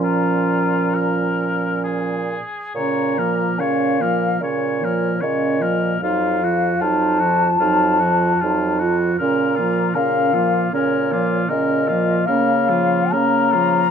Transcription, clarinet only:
0.00 2.42 C#4 soft
2.76 3.19 C#4 soft
3.18 3.61 A#3 soft
3.59 4.02 C#4 soft
4.00 4.41 A#3 soft
4.41 4.83 C#4 soft
4.82 5.23 A#3 soft
5.22 5.64 C#4 soft
5.63 6.01 A#3 soft
6.02 6.44 D#4 soft
6.42 6.84 F4 soft
6.82 7.23 D#4 soft
7.21 7.61 F4 soft
7.61 8.03 D#4 soft
8.01 8.44 F4 soft
8.42 8.83 D#4 soft
8.82 9.20 F4 soft
9.20 9.59 C#4 soft
9.58 9.97 A#3 soft
9.96 10.35 C#4 soft
10.34 10.73 A#3 soft
10.73 11.13 C#4 soft
11.12 11.53 A#3 soft
11.52 11.91 C#4 soft
11.89 12.28 A#3 soft
12.29 12.72 C#4 soft
12.71 13.15 A#3 soft
13.13 13.56 C#4 soft
13.54 13.91 A#3 soft

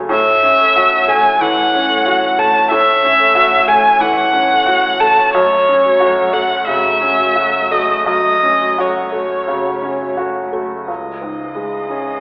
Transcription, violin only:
0.11 1.10 E5 loud
1.08 1.42 G#5 loud
1.41 2.40 F#5 medium
2.39 2.70 A5 loud
2.71 3.70 E5 loud
3.68 4.02 G#5 loud
4.01 5.02 F#5 loud
5.00 5.33 A5 loud
5.34 6.34 C#5 loud
6.33 6.67 F#5 medium
6.67 7.73 E5 loud
7.72 8.06 D#5 medium
8.07 8.81 D#5 medium
8.80 10.19 C#5 medium
10.89 12.20 D#5 soft

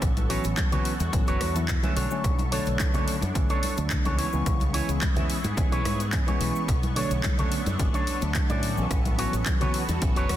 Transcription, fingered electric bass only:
0.02 0.36 A1 loud
0.45 0.53 A1 medium
1.00 1.08 E2 medium
1.13 1.22 A1 medium
1.28 1.36 F#1 medium
1.41 1.75 E2 medium
1.97 2.06 B1 loud
2.24 2.58 B1 loud
2.67 2.75 B1 medium
3.23 3.31 F#2 loud
3.35 3.45 A1 medium
3.78 3.95 D2 medium
4.06 4.23 C#2 medium
4.33 4.42 C#2 medium
4.46 4.80 C#2 medium
4.89 4.97 C#2 medium
5.44 5.53 G#2 medium
5.57 5.67 C#2 loud
5.72 5.80 B1 medium
5.85 6.19 G#2 medium
6.41 6.50 B1 medium
6.68 7.02 B1 medium
7.11 7.19 B1 medium
7.67 7.75 F#2 medium
7.80 7.89 A1 medium
8.22 8.39 D2 medium
8.50 8.79 A2 medium
8.78 8.86 B1 medium
8.91 9.25 A1 medium
9.33 9.42 A1 medium
9.89 9.97 E2 medium
10.02 10.11 A1 loud
10.17 10.25 F#1 medium
10.30 10.37 E2 medium

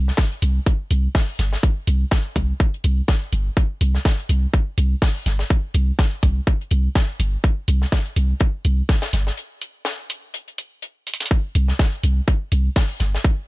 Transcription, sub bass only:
0.00 0.11 C2 medium
0.42 0.60 C2 medium
0.91 1.08 C2 medium
1.39 1.56 G1 medium
1.87 2.05 C2 medium
2.36 2.53 C2 medium
2.84 3.02 C2 medium
3.33 3.50 G1 medium
3.81 3.98 C2 medium
4.29 4.47 C2 medium
4.78 4.95 C2 loud
5.26 5.43 G1 medium
5.74 5.92 C2 loud
6.23 6.40 C2 medium
6.71 6.89 C2 medium
7.20 7.37 G1 medium
7.68 7.85 C2 loud
8.16 8.34 C2 medium
8.65 8.82 C2 medium
9.13 9.31 G1 medium
11.55 11.73 C2 loud
12.03 12.21 C2 medium
12.52 12.69 C2 medium
13.00 13.18 G1 medium

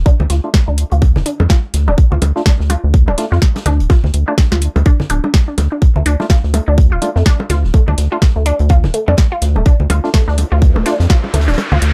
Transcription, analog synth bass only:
0.20 0.27 D2 loud
0.30 0.40 D2 medium
0.68 0.84 D2 medium
0.92 1.17 D2 medium
1.16 1.23 D1 medium
1.40 1.47 F2 medium
1.74 1.89 D2 medium
1.88 1.95 D1 medium
2.12 2.19 D2 loud
2.22 2.32 D2 medium
2.60 2.76 D2 medium
2.84 3.09 D2 loud
3.08 3.15 D1 medium
3.32 3.39 F2 loud
3.66 3.81 D2 medium
3.80 3.87 D1 medium
4.04 4.11 D2 loud
4.14 4.24 D2 medium
4.52 4.68 D2 medium
4.76 4.83 D2 loud
5.10 5.20 D1 loud
5.58 5.68 D2 medium
5.96 6.03 D2 medium
6.06 6.16 D2 medium
6.44 6.60 D2 medium
6.68 6.93 D2 medium
6.92 6.99 D1 medium
7.16 7.23 F2 loud
7.50 7.65 D2 medium
7.64 7.71 D1 medium
7.88 7.95 D2 loud
7.98 8.08 D2 medium
8.36 8.52 D2 medium
8.60 8.85 D2 medium
8.84 8.91 D1 medium
9.08 9.15 F2 loud
9.42 9.57 D2 medium
9.56 9.63 D1 medium
9.80 9.87 D2 medium
9.90 10.00 D2 medium
10.28 10.44 D2 medium
10.52 10.77 D2 medium
10.76 10.83 D1 medium
11.00 11.07 F2 medium
11.34 11.49 D2 medium
11.48 11.55 D1 medium
11.72 11.79 D2 loud
11.82 11.92 D2 medium

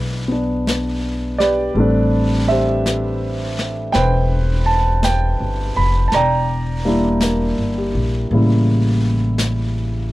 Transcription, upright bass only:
0.00 1.71 B1 medium
1.75 3.90 A1 medium
3.95 5.36 E1 medium
5.40 5.74 G1 soft
5.77 6.10 F1 medium
6.13 7.54 E1 medium
7.58 7.92 G1 soft
7.94 8.28 A#1 medium
8.31 10.12 A1 medium

